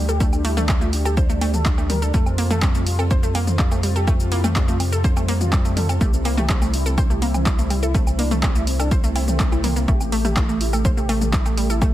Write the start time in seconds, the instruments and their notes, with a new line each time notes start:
Already playing: analog synth bass D2, analog synth pad D3 A3 G4
0.09 analog synth lead G4, synth arpeggio sound A4, shaker
0.20 analog synth pad G3, synth arpeggio sound A3, analog synth lead D4, kick, shaker
0.33 analog synth lead D4, low woodblock, shaker
0.45 synth arpeggio sound A3, analog synth lead E4, open hi-hat
0.57 synth arpeggio sound A3, analog synth lead D4, mid tom, shaker
0.69 synth arpeggio sound G3, analog synth lead D4, kick, clap, low woodblock, shaker
0.81 synth arpeggio sound A3, analog synth lead F4, shaker
0.93 analog synth lead D4, open hi-hat
1.05 analog synth lead G4, synth arpeggio sound A4, low woodblock, shaker
1.17 analog synth lead D4, synth arpeggio sound C5, kick, shaker
1.30 synth arpeggio sound A3, analog synth lead D4, shaker
1.41 synth arpeggio sound A3, analog synth lead D4, open hi-hat, low woodblock
1.54 analog synth lead A4, mid tom, shaker
1.65 synth arpeggio sound G3, analog synth lead D4, kick, clap, shaker
1.78 synth arpeggio sound A3, analog synth lead D4, low woodblock, shaker
1.90 synth arpeggio sound G3, analog synth lead A#4, open hi-hat, mid tom
2.02 analog synth lead D4, synth arpeggio sound A4, shaker
2.14 analog synth bass F2, analog synth pad C3 G3 F4, synth arpeggio sound A3, analog synth lead A4, kick, shaker
2.26 analog synth lead C4, low woodblock, shaker
2.38 synth arpeggio sound A#3, analog synth lead C4, open hi-hat
2.51 synth arpeggio sound A3, analog synth lead A4, mid tom, shaker
2.62 synth arpeggio sound G3, analog synth lead C4, kick, clap, low woodblock, shaker
2.75 synth arpeggio sound A3, analog synth lead C4, shaker
2.86 analog synth lead F4, open hi-hat
2.99 analog synth lead C4, synth arpeggio sound A4, low woodblock, shaker
3.11 analog synth lead C4, synth arpeggio sound C5, kick, shaker
3.23 synth arpeggio sound A3, analog synth lead A4, shaker
3.35 synth arpeggio sound A#3, analog synth lead C4, open hi-hat, low woodblock
3.47 analog synth lead C4, mid tom, shaker
3.59 synth arpeggio sound G3, analog synth lead F4, kick, clap, shaker
3.71 synth arpeggio sound A3, analog synth lead C4, low woodblock, shaker
3.83 synth arpeggio sound G3, analog synth lead C4, open hi-hat
3.96 analog synth lead G4, synth arpeggio sound A4, shaker
4.07 synth arpeggio sound A3, analog synth lead C4, kick, low woodblock, shaker
4.20 analog synth lead C4, shaker
4.32 synth arpeggio sound A#3, analog synth lead E4, open hi-hat
4.44 synth arpeggio sound A3, analog synth lead C4, mid tom, low woodblock, shaker
4.56 synth arpeggio sound G3, analog synth lead C4, kick, clap, shaker
4.68 synth arpeggio sound A3, analog synth lead F4, shaker
4.80 analog synth lead C4, open hi-hat, low woodblock
4.92 synth arpeggio sound A4, analog synth lead A4, shaker
5.04 analog synth lead C4, synth arpeggio sound C5, kick, shaker
5.17 synth arpeggio sound A3, analog synth lead C4, low woodblock, shaker
5.28 synth arpeggio sound A#3, analog synth lead C4, open hi-hat
5.41 analog synth lead F4, mid tom, shaker
5.53 synth arpeggio sound G3, analog synth lead C4, kick, clap, low woodblock, shaker
5.65 synth arpeggio sound A3, analog synth lead C4, shaker
5.77 synth arpeggio sound G3, analog synth lead A4, open hi-hat, mid tom
5.89 analog synth lead C4, synth arpeggio sound A4, low woodblock, shaker
6.01 analog synth bass C2, synth arpeggio sound A3, analog synth pad E4, analog synth lead G4, kick, shaker
6.13 analog synth lead C4, shaker
6.25 synth arpeggio sound A#3, analog synth lead C4, open hi-hat, low woodblock
6.38 synth arpeggio sound A3, analog synth lead G4, mid tom, shaker
6.49 synth arpeggio sound G3, analog synth lead C4, kick, clap, shaker
6.62 synth arpeggio sound A3, analog synth lead C4, low woodblock, shaker
6.74 analog synth lead E4, open hi-hat
6.86 analog synth lead C4, synth arpeggio sound A4, shaker
6.98 analog synth lead C4, synth arpeggio sound C5, kick, low woodblock, shaker
7.10 synth arpeggio sound A3, analog synth lead G4, shaker
7.22 synth arpeggio sound A#3, analog synth lead C4, open hi-hat
7.34 analog synth lead C4, mid tom, low woodblock, shaker
7.46 synth arpeggio sound G3, analog synth lead E4, kick, clap, shaker
7.59 synth arpeggio sound A3, analog synth lead C4, shaker
7.70 synth arpeggio sound G3, analog synth lead C4, open hi-hat, low woodblock
7.83 analog synth lead E4, synth arpeggio sound A4, shaker
7.95 synth arpeggio sound A3, analog synth pad A3, analog synth lead C4, kick, shaker
8.07 analog synth lead C4, low woodblock, shaker
8.19 synth arpeggio sound A#3, analog synth lead D4, open hi-hat
8.31 synth arpeggio sound A3, analog synth lead C4, mid tom, shaker
8.43 synth arpeggio sound G3, analog synth lead C4, kick, clap, low woodblock, shaker
8.55 synth arpeggio sound A3, analog synth lead E4, shaker
8.67 analog synth lead C4, open hi-hat
8.80 analog synth lead D4, synth arpeggio sound A4, low woodblock, shaker
8.91 analog synth lead C4, synth arpeggio sound C5, kick, swell, shaker
9.04 synth arpeggio sound A3, analog synth lead C4, shaker
9.16 analog synth lead C4, synth arpeggio sound E4, open hi-hat, low woodblock
9.28 analog synth lead C4, mid tom, shaker
9.40 analog synth lead C4, synth arpeggio sound C4, kick, clap, shaker
9.52 analog synth lead C4, synth arpeggio sound E4, low woodblock, shaker
9.64 synth arpeggio sound A#3, analog synth lead C4, open hi-hat, mid tom
9.76 synth arpeggio sound A#3, analog synth lead C4, shaker
9.88 analog synth bass A1, synth arpeggio sound A3, analog synth lead G4, analog synth pad G4, kick, shaker
10.00 analog synth lead A3, low woodblock, shaker
10.12 synth arpeggio sound A3, analog synth lead A3, open hi-hat
10.25 synth arpeggio sound A3, analog synth lead G4, mid tom, shaker
10.36 synth arpeggio sound E3, analog synth lead A3, kick, clap, low woodblock, shaker
10.49 analog synth lead A3, synth arpeggio sound A3, shaker
10.61 analog synth lead E4, open hi-hat
10.73 analog synth lead A3, synth arpeggio sound A4, low woodblock, shaker
10.85 analog synth lead A3, synth arpeggio sound C5, kick, shaker
10.97 synth arpeggio sound A3, analog synth lead G4, shaker
11.09 synth arpeggio sound A3, analog synth lead A3, open hi-hat, low woodblock
11.22 analog synth lead A3, mid tom, shaker
11.33 synth arpeggio sound G3, analog synth lead E4, kick, clap, shaker
11.46 analog synth lead A3, synth arpeggio sound A3, low woodblock, shaker
11.57 synth arpeggio sound G3, analog synth lead A3, open hi-hat
11.70 analog synth lead E4, synth arpeggio sound A4, shaker
11.82 analog synth lead A3, synth arpeggio sound A3, kick, low woodblock, shaker